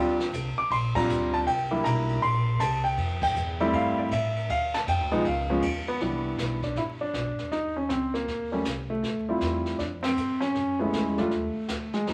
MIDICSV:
0, 0, Header, 1, 5, 480
1, 0, Start_track
1, 0, Key_signature, 0, "major"
1, 0, Tempo, 378788
1, 1858, Time_signature, 4, 2, 24, 8
1, 15376, End_track
2, 0, Start_track
2, 0, Title_t, "Grand piano"
2, 0, Program_c, 0, 0
2, 0, Note_on_c, 0, 55, 70
2, 0, Note_on_c, 0, 60, 59
2, 0, Note_on_c, 0, 62, 63
2, 0, Note_on_c, 0, 65, 76
2, 0, Note_on_c, 0, 79, 96
2, 219, Note_off_c, 0, 55, 0
2, 222, Note_off_c, 0, 60, 0
2, 223, Note_off_c, 0, 62, 0
2, 225, Note_off_c, 0, 65, 0
2, 372, Note_off_c, 0, 79, 0
2, 733, Note_on_c, 0, 86, 99
2, 906, Note_on_c, 0, 84, 95
2, 907, Note_off_c, 0, 86, 0
2, 975, Note_off_c, 0, 84, 0
2, 1207, Note_on_c, 0, 55, 67
2, 1207, Note_on_c, 0, 82, 101
2, 1208, Note_on_c, 0, 60, 62
2, 1212, Note_on_c, 0, 65, 74
2, 1214, Note_on_c, 0, 62, 62
2, 1693, Note_on_c, 0, 81, 89
2, 1700, Note_off_c, 0, 82, 0
2, 1756, Note_off_c, 0, 81, 0
2, 1823, Note_off_c, 0, 55, 0
2, 1824, Note_off_c, 0, 60, 0
2, 1825, Note_off_c, 0, 65, 0
2, 1826, Note_off_c, 0, 62, 0
2, 1862, Note_on_c, 0, 79, 99
2, 2167, Note_on_c, 0, 55, 67
2, 2167, Note_on_c, 0, 58, 62
2, 2167, Note_on_c, 0, 62, 63
2, 2170, Note_on_c, 0, 64, 76
2, 2333, Note_on_c, 0, 82, 97
2, 2353, Note_off_c, 0, 79, 0
2, 2782, Note_off_c, 0, 55, 0
2, 2782, Note_off_c, 0, 58, 0
2, 2782, Note_off_c, 0, 62, 0
2, 2783, Note_off_c, 0, 64, 0
2, 2817, Note_on_c, 0, 84, 96
2, 2828, Note_off_c, 0, 82, 0
2, 3295, Note_on_c, 0, 81, 91
2, 3309, Note_off_c, 0, 84, 0
2, 3596, Note_on_c, 0, 79, 89
2, 3612, Note_off_c, 0, 81, 0
2, 4044, Note_off_c, 0, 79, 0
2, 4092, Note_on_c, 0, 79, 103
2, 4568, Note_on_c, 0, 55, 88
2, 4569, Note_on_c, 0, 57, 79
2, 4571, Note_on_c, 0, 60, 80
2, 4575, Note_on_c, 0, 64, 94
2, 4738, Note_on_c, 0, 77, 89
2, 4757, Note_off_c, 0, 79, 0
2, 5045, Note_on_c, 0, 74, 73
2, 5052, Note_off_c, 0, 77, 0
2, 5108, Note_off_c, 0, 74, 0
2, 5180, Note_off_c, 0, 55, 0
2, 5181, Note_off_c, 0, 57, 0
2, 5182, Note_off_c, 0, 60, 0
2, 5184, Note_off_c, 0, 64, 0
2, 5227, Note_on_c, 0, 76, 82
2, 5706, Note_on_c, 0, 77, 94
2, 5713, Note_off_c, 0, 76, 0
2, 5985, Note_off_c, 0, 77, 0
2, 6011, Note_on_c, 0, 81, 83
2, 6074, Note_off_c, 0, 81, 0
2, 6193, Note_on_c, 0, 79, 85
2, 6482, Note_on_c, 0, 53, 77
2, 6482, Note_on_c, 0, 56, 70
2, 6488, Note_on_c, 0, 59, 73
2, 6489, Note_on_c, 0, 63, 89
2, 6634, Note_off_c, 0, 53, 0
2, 6634, Note_off_c, 0, 56, 0
2, 6637, Note_off_c, 0, 59, 0
2, 6638, Note_off_c, 0, 63, 0
2, 6675, Note_off_c, 0, 79, 0
2, 6676, Note_on_c, 0, 77, 77
2, 6962, Note_on_c, 0, 53, 72
2, 6967, Note_on_c, 0, 59, 62
2, 6968, Note_on_c, 0, 56, 66
2, 6970, Note_on_c, 0, 61, 76
2, 7114, Note_off_c, 0, 53, 0
2, 7117, Note_off_c, 0, 56, 0
2, 7117, Note_off_c, 0, 59, 0
2, 7118, Note_off_c, 0, 61, 0
2, 7400, Note_off_c, 0, 77, 0
2, 7455, Note_on_c, 0, 59, 91
2, 7604, Note_off_c, 0, 59, 0
2, 7618, Note_on_c, 0, 52, 57
2, 7622, Note_on_c, 0, 55, 49
2, 7623, Note_on_c, 0, 59, 53
2, 7626, Note_on_c, 0, 62, 61
2, 8341, Note_off_c, 0, 52, 0
2, 8343, Note_off_c, 0, 55, 0
2, 8343, Note_off_c, 0, 59, 0
2, 8345, Note_off_c, 0, 62, 0
2, 8410, Note_on_c, 0, 62, 67
2, 8581, Note_off_c, 0, 62, 0
2, 8585, Note_on_c, 0, 64, 70
2, 8653, Note_off_c, 0, 64, 0
2, 8883, Note_on_c, 0, 62, 81
2, 9488, Note_off_c, 0, 62, 0
2, 9524, Note_on_c, 0, 63, 82
2, 9815, Note_off_c, 0, 63, 0
2, 9838, Note_on_c, 0, 61, 67
2, 9999, Note_off_c, 0, 61, 0
2, 9999, Note_on_c, 0, 60, 73
2, 10293, Note_off_c, 0, 60, 0
2, 10314, Note_on_c, 0, 58, 91
2, 10783, Note_off_c, 0, 58, 0
2, 10797, Note_on_c, 0, 55, 60
2, 10802, Note_on_c, 0, 57, 54
2, 10802, Note_on_c, 0, 58, 52
2, 10809, Note_on_c, 0, 61, 63
2, 10955, Note_off_c, 0, 55, 0
2, 10957, Note_off_c, 0, 57, 0
2, 10957, Note_off_c, 0, 58, 0
2, 10961, Note_off_c, 0, 61, 0
2, 11277, Note_on_c, 0, 57, 76
2, 11767, Note_on_c, 0, 65, 58
2, 11768, Note_on_c, 0, 55, 52
2, 11772, Note_on_c, 0, 60, 56
2, 11777, Note_on_c, 0, 64, 65
2, 12364, Note_off_c, 0, 57, 0
2, 12384, Note_off_c, 0, 65, 0
2, 12385, Note_off_c, 0, 55, 0
2, 12386, Note_off_c, 0, 60, 0
2, 12389, Note_off_c, 0, 64, 0
2, 12401, Note_on_c, 0, 62, 72
2, 12473, Note_off_c, 0, 62, 0
2, 12705, Note_on_c, 0, 60, 90
2, 13162, Note_off_c, 0, 60, 0
2, 13186, Note_on_c, 0, 61, 89
2, 13643, Note_off_c, 0, 61, 0
2, 13678, Note_on_c, 0, 59, 65
2, 13688, Note_on_c, 0, 56, 58
2, 13691, Note_on_c, 0, 57, 51
2, 13693, Note_on_c, 0, 61, 53
2, 13693, Note_on_c, 0, 64, 62
2, 13834, Note_off_c, 0, 57, 0
2, 13853, Note_on_c, 0, 57, 70
2, 13860, Note_off_c, 0, 59, 0
2, 13916, Note_off_c, 0, 57, 0
2, 14037, Note_off_c, 0, 56, 0
2, 14056, Note_on_c, 0, 56, 49
2, 14140, Note_off_c, 0, 61, 0
2, 14140, Note_off_c, 0, 64, 0
2, 14161, Note_on_c, 0, 57, 78
2, 14168, Note_on_c, 0, 55, 63
2, 14169, Note_off_c, 0, 56, 0
2, 14170, Note_on_c, 0, 62, 63
2, 14173, Note_on_c, 0, 65, 74
2, 14323, Note_off_c, 0, 55, 0
2, 14324, Note_off_c, 0, 62, 0
2, 14325, Note_off_c, 0, 65, 0
2, 15126, Note_on_c, 0, 56, 71
2, 15155, Note_off_c, 0, 57, 0
2, 15286, Note_off_c, 0, 56, 0
2, 15303, Note_on_c, 0, 54, 57
2, 15305, Note_on_c, 0, 56, 49
2, 15308, Note_on_c, 0, 59, 50
2, 15310, Note_on_c, 0, 63, 59
2, 15376, Note_off_c, 0, 54, 0
2, 15376, Note_off_c, 0, 56, 0
2, 15376, Note_off_c, 0, 59, 0
2, 15376, Note_off_c, 0, 63, 0
2, 15376, End_track
3, 0, Start_track
3, 0, Title_t, "Upright bass"
3, 0, Program_c, 1, 32
3, 0, Note_on_c, 1, 38, 80
3, 403, Note_off_c, 1, 38, 0
3, 414, Note_on_c, 1, 36, 88
3, 703, Note_off_c, 1, 36, 0
3, 891, Note_on_c, 1, 34, 86
3, 1353, Note_off_c, 1, 34, 0
3, 1361, Note_on_c, 1, 38, 86
3, 1834, Note_off_c, 1, 38, 0
3, 1857, Note_on_c, 1, 36, 81
3, 2322, Note_off_c, 1, 36, 0
3, 2332, Note_on_c, 1, 35, 98
3, 2799, Note_off_c, 1, 35, 0
3, 2810, Note_on_c, 1, 34, 91
3, 3277, Note_off_c, 1, 34, 0
3, 3287, Note_on_c, 1, 36, 93
3, 3755, Note_off_c, 1, 36, 0
3, 3763, Note_on_c, 1, 41, 86
3, 4233, Note_off_c, 1, 41, 0
3, 4238, Note_on_c, 1, 40, 101
3, 4710, Note_off_c, 1, 40, 0
3, 4726, Note_on_c, 1, 43, 94
3, 5193, Note_off_c, 1, 43, 0
3, 5205, Note_on_c, 1, 45, 88
3, 5673, Note_off_c, 1, 45, 0
3, 5687, Note_on_c, 1, 38, 83
3, 6154, Note_off_c, 1, 38, 0
3, 6168, Note_on_c, 1, 41, 88
3, 6325, Note_off_c, 1, 41, 0
3, 6325, Note_on_c, 1, 38, 62
3, 6473, Note_off_c, 1, 38, 0
3, 6480, Note_on_c, 1, 36, 66
3, 6633, Note_off_c, 1, 36, 0
3, 6643, Note_on_c, 1, 37, 86
3, 7112, Note_off_c, 1, 37, 0
3, 7122, Note_on_c, 1, 39, 86
3, 7591, Note_off_c, 1, 39, 0
3, 7604, Note_on_c, 1, 36, 69
3, 8073, Note_off_c, 1, 36, 0
3, 8078, Note_on_c, 1, 35, 75
3, 8550, Note_off_c, 1, 35, 0
3, 8562, Note_on_c, 1, 31, 72
3, 9032, Note_off_c, 1, 31, 0
3, 9040, Note_on_c, 1, 35, 74
3, 9201, Note_on_c, 1, 31, 46
3, 9220, Note_off_c, 1, 35, 0
3, 9344, Note_off_c, 1, 31, 0
3, 9351, Note_on_c, 1, 28, 53
3, 9510, Note_off_c, 1, 28, 0
3, 9521, Note_on_c, 1, 39, 67
3, 9993, Note_off_c, 1, 39, 0
3, 10005, Note_on_c, 1, 37, 74
3, 10472, Note_off_c, 1, 37, 0
3, 10479, Note_on_c, 1, 39, 71
3, 10953, Note_off_c, 1, 39, 0
3, 10962, Note_on_c, 1, 36, 82
3, 11428, Note_off_c, 1, 36, 0
3, 11436, Note_on_c, 1, 38, 73
3, 11912, Note_off_c, 1, 38, 0
3, 11918, Note_on_c, 1, 40, 76
3, 12394, Note_off_c, 1, 40, 0
3, 12404, Note_on_c, 1, 41, 76
3, 12877, Note_off_c, 1, 41, 0
3, 12883, Note_on_c, 1, 43, 81
3, 13357, Note_off_c, 1, 43, 0
3, 13366, Note_on_c, 1, 42, 76
3, 13839, Note_off_c, 1, 42, 0
3, 13848, Note_on_c, 1, 40, 78
3, 14320, Note_off_c, 1, 40, 0
3, 14325, Note_on_c, 1, 39, 72
3, 14619, Note_off_c, 1, 39, 0
3, 14803, Note_on_c, 1, 38, 76
3, 15278, Note_off_c, 1, 38, 0
3, 15289, Note_on_c, 1, 40, 71
3, 15376, Note_off_c, 1, 40, 0
3, 15376, End_track
4, 0, Start_track
4, 0, Title_t, "Muted upright bass strokes"
4, 717, Note_on_c, 9, 29, 39
4, 844, Note_off_c, 9, 29, 0
4, 15376, End_track
5, 0, Start_track
5, 0, Title_t, "Drums"
5, 252, Note_on_c, 9, 38, 54
5, 379, Note_off_c, 9, 38, 0
5, 420, Note_on_c, 9, 36, 21
5, 421, Note_on_c, 9, 44, 60
5, 421, Note_on_c, 9, 51, 64
5, 547, Note_off_c, 9, 36, 0
5, 547, Note_off_c, 9, 44, 0
5, 547, Note_off_c, 9, 51, 0
5, 899, Note_on_c, 9, 36, 25
5, 901, Note_on_c, 9, 51, 69
5, 1026, Note_off_c, 9, 36, 0
5, 1027, Note_off_c, 9, 51, 0
5, 1207, Note_on_c, 9, 36, 83
5, 1209, Note_on_c, 9, 49, 77
5, 1333, Note_off_c, 9, 36, 0
5, 1336, Note_off_c, 9, 49, 0
5, 1384, Note_on_c, 9, 44, 53
5, 1511, Note_off_c, 9, 44, 0
5, 1691, Note_on_c, 9, 51, 49
5, 1818, Note_off_c, 9, 51, 0
5, 1859, Note_on_c, 9, 36, 19
5, 1862, Note_on_c, 9, 51, 64
5, 1985, Note_off_c, 9, 36, 0
5, 1989, Note_off_c, 9, 51, 0
5, 2337, Note_on_c, 9, 36, 21
5, 2343, Note_on_c, 9, 44, 56
5, 2343, Note_on_c, 9, 51, 68
5, 2464, Note_off_c, 9, 36, 0
5, 2470, Note_off_c, 9, 44, 0
5, 2470, Note_off_c, 9, 51, 0
5, 2646, Note_on_c, 9, 51, 49
5, 2773, Note_off_c, 9, 51, 0
5, 2816, Note_on_c, 9, 36, 28
5, 2821, Note_on_c, 9, 51, 62
5, 2942, Note_off_c, 9, 36, 0
5, 2948, Note_off_c, 9, 51, 0
5, 3292, Note_on_c, 9, 44, 60
5, 3292, Note_on_c, 9, 51, 77
5, 3293, Note_on_c, 9, 36, 19
5, 3419, Note_off_c, 9, 44, 0
5, 3419, Note_off_c, 9, 51, 0
5, 3420, Note_off_c, 9, 36, 0
5, 3601, Note_on_c, 9, 51, 50
5, 3727, Note_off_c, 9, 51, 0
5, 3766, Note_on_c, 9, 51, 62
5, 3770, Note_on_c, 9, 36, 23
5, 3893, Note_off_c, 9, 51, 0
5, 3897, Note_off_c, 9, 36, 0
5, 4079, Note_on_c, 9, 36, 86
5, 4081, Note_on_c, 9, 49, 81
5, 4206, Note_off_c, 9, 36, 0
5, 4208, Note_off_c, 9, 49, 0
5, 4253, Note_on_c, 9, 44, 54
5, 4380, Note_off_c, 9, 44, 0
5, 4562, Note_on_c, 9, 51, 45
5, 4689, Note_off_c, 9, 51, 0
5, 4728, Note_on_c, 9, 51, 63
5, 4731, Note_on_c, 9, 36, 24
5, 4855, Note_off_c, 9, 51, 0
5, 4858, Note_off_c, 9, 36, 0
5, 5210, Note_on_c, 9, 44, 59
5, 5210, Note_on_c, 9, 51, 69
5, 5212, Note_on_c, 9, 36, 20
5, 5337, Note_off_c, 9, 44, 0
5, 5337, Note_off_c, 9, 51, 0
5, 5338, Note_off_c, 9, 36, 0
5, 5527, Note_on_c, 9, 51, 48
5, 5653, Note_off_c, 9, 51, 0
5, 5694, Note_on_c, 9, 36, 22
5, 5696, Note_on_c, 9, 51, 65
5, 5820, Note_off_c, 9, 36, 0
5, 5822, Note_off_c, 9, 51, 0
5, 6007, Note_on_c, 9, 38, 58
5, 6134, Note_off_c, 9, 38, 0
5, 6172, Note_on_c, 9, 36, 18
5, 6176, Note_on_c, 9, 44, 52
5, 6176, Note_on_c, 9, 51, 72
5, 6299, Note_off_c, 9, 36, 0
5, 6303, Note_off_c, 9, 44, 0
5, 6303, Note_off_c, 9, 51, 0
5, 6481, Note_on_c, 9, 51, 47
5, 6608, Note_off_c, 9, 51, 0
5, 6649, Note_on_c, 9, 51, 65
5, 6650, Note_on_c, 9, 36, 27
5, 6775, Note_off_c, 9, 51, 0
5, 6777, Note_off_c, 9, 36, 0
5, 7123, Note_on_c, 9, 44, 58
5, 7123, Note_on_c, 9, 51, 76
5, 7128, Note_on_c, 9, 36, 27
5, 7250, Note_off_c, 9, 44, 0
5, 7250, Note_off_c, 9, 51, 0
5, 7255, Note_off_c, 9, 36, 0
5, 7437, Note_on_c, 9, 51, 47
5, 7563, Note_off_c, 9, 51, 0
5, 7607, Note_on_c, 9, 25, 39
5, 7607, Note_on_c, 9, 38, 34
5, 7608, Note_on_c, 9, 36, 17
5, 7734, Note_off_c, 9, 36, 0
5, 7734, Note_off_c, 9, 38, 0
5, 8088, Note_on_c, 9, 36, 20
5, 8089, Note_on_c, 9, 44, 49
5, 8091, Note_on_c, 9, 38, 42
5, 8214, Note_off_c, 9, 36, 0
5, 8216, Note_off_c, 9, 44, 0
5, 8217, Note_off_c, 9, 38, 0
5, 8396, Note_on_c, 9, 36, 44
5, 8396, Note_on_c, 9, 38, 29
5, 8522, Note_off_c, 9, 36, 0
5, 8522, Note_off_c, 9, 38, 0
5, 8566, Note_on_c, 9, 36, 19
5, 8568, Note_off_c, 9, 25, 0
5, 8568, Note_on_c, 9, 25, 41
5, 8568, Note_on_c, 9, 38, 34
5, 8692, Note_off_c, 9, 36, 0
5, 8695, Note_off_c, 9, 38, 0
5, 9047, Note_on_c, 9, 36, 18
5, 9047, Note_on_c, 9, 44, 49
5, 9048, Note_on_c, 9, 38, 49
5, 9174, Note_off_c, 9, 36, 0
5, 9174, Note_off_c, 9, 44, 0
5, 9175, Note_off_c, 9, 38, 0
5, 9359, Note_on_c, 9, 38, 32
5, 9485, Note_off_c, 9, 38, 0
5, 9526, Note_on_c, 9, 36, 22
5, 9528, Note_off_c, 9, 25, 0
5, 9528, Note_on_c, 9, 25, 35
5, 9528, Note_on_c, 9, 38, 31
5, 9653, Note_off_c, 9, 36, 0
5, 9655, Note_off_c, 9, 38, 0
5, 10005, Note_on_c, 9, 44, 41
5, 10006, Note_on_c, 9, 38, 46
5, 10007, Note_on_c, 9, 36, 16
5, 10131, Note_off_c, 9, 44, 0
5, 10133, Note_off_c, 9, 38, 0
5, 10134, Note_off_c, 9, 36, 0
5, 10321, Note_on_c, 9, 38, 32
5, 10448, Note_off_c, 9, 38, 0
5, 10486, Note_on_c, 9, 36, 17
5, 10492, Note_off_c, 9, 25, 0
5, 10492, Note_on_c, 9, 25, 47
5, 10492, Note_on_c, 9, 38, 36
5, 10613, Note_off_c, 9, 36, 0
5, 10618, Note_off_c, 9, 38, 0
5, 10960, Note_on_c, 9, 44, 50
5, 10962, Note_on_c, 9, 38, 51
5, 10965, Note_on_c, 9, 36, 16
5, 11087, Note_off_c, 9, 44, 0
5, 11088, Note_off_c, 9, 38, 0
5, 11091, Note_off_c, 9, 36, 0
5, 11444, Note_on_c, 9, 36, 23
5, 11448, Note_off_c, 9, 25, 0
5, 11448, Note_on_c, 9, 25, 39
5, 11448, Note_on_c, 9, 38, 34
5, 11571, Note_off_c, 9, 36, 0
5, 11575, Note_off_c, 9, 38, 0
5, 11922, Note_on_c, 9, 44, 41
5, 11923, Note_on_c, 9, 38, 48
5, 11925, Note_on_c, 9, 36, 16
5, 12048, Note_off_c, 9, 44, 0
5, 12050, Note_off_c, 9, 38, 0
5, 12051, Note_off_c, 9, 36, 0
5, 12235, Note_on_c, 9, 38, 33
5, 12362, Note_off_c, 9, 38, 0
5, 12405, Note_off_c, 9, 25, 0
5, 12405, Note_on_c, 9, 25, 43
5, 12405, Note_on_c, 9, 36, 16
5, 12405, Note_on_c, 9, 38, 36
5, 12532, Note_off_c, 9, 36, 0
5, 12532, Note_off_c, 9, 38, 0
5, 12716, Note_on_c, 9, 51, 59
5, 12718, Note_on_c, 9, 38, 70
5, 12843, Note_off_c, 9, 51, 0
5, 12844, Note_off_c, 9, 38, 0
5, 12886, Note_on_c, 9, 44, 52
5, 13013, Note_off_c, 9, 44, 0
5, 13196, Note_on_c, 9, 38, 34
5, 13323, Note_off_c, 9, 38, 0
5, 13368, Note_on_c, 9, 36, 17
5, 13370, Note_off_c, 9, 25, 0
5, 13370, Note_on_c, 9, 25, 41
5, 13370, Note_on_c, 9, 38, 34
5, 13495, Note_off_c, 9, 36, 0
5, 13497, Note_off_c, 9, 38, 0
5, 13851, Note_on_c, 9, 36, 16
5, 13852, Note_on_c, 9, 44, 46
5, 13853, Note_on_c, 9, 38, 47
5, 13977, Note_off_c, 9, 36, 0
5, 13978, Note_off_c, 9, 44, 0
5, 13980, Note_off_c, 9, 38, 0
5, 14161, Note_on_c, 9, 38, 32
5, 14288, Note_off_c, 9, 38, 0
5, 14330, Note_on_c, 9, 36, 19
5, 14332, Note_off_c, 9, 25, 0
5, 14332, Note_on_c, 9, 25, 47
5, 14332, Note_on_c, 9, 38, 37
5, 14457, Note_off_c, 9, 36, 0
5, 14458, Note_off_c, 9, 38, 0
5, 14805, Note_on_c, 9, 44, 48
5, 14806, Note_on_c, 9, 38, 53
5, 14811, Note_on_c, 9, 36, 18
5, 14931, Note_off_c, 9, 44, 0
5, 14933, Note_off_c, 9, 38, 0
5, 14938, Note_off_c, 9, 36, 0
5, 15121, Note_on_c, 9, 38, 34
5, 15247, Note_off_c, 9, 38, 0
5, 15295, Note_off_c, 9, 25, 0
5, 15295, Note_on_c, 9, 25, 38
5, 15295, Note_on_c, 9, 36, 16
5, 15295, Note_on_c, 9, 38, 34
5, 15376, Note_off_c, 9, 25, 0
5, 15376, Note_off_c, 9, 36, 0
5, 15376, Note_off_c, 9, 38, 0
5, 15376, End_track
0, 0, End_of_file